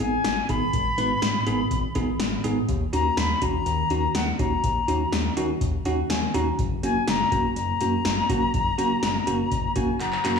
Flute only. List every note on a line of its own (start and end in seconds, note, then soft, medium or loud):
0.00 0.51 G#5 loud
0.49 2.44 B5 loud
2.93 3.19 A#5 loud
3.17 3.43 B5 loud
3.42 4.17 A#5 loud
4.15 4.39 F#5 medium
4.39 5.33 A#5 loud
6.83 7.06 G#5 loud
7.08 7.53 A#5 loud
7.56 9.72 A#5 loud
9.76 9.99 G#5 medium
10.00 10.39 A#5 medium